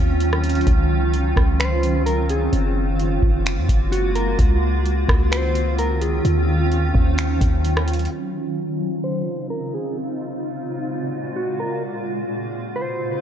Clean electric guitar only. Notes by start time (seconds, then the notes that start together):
1.60 C5
2.06 A#4
2.30 G#4
3.92 F#4
4.15 A#4
5.32 C5
5.79 A#4
6.01 G#4
9.04 C5
9.50 A#4
9.74 G#4
11.36 F#4
11.60 A#4
12.76 C5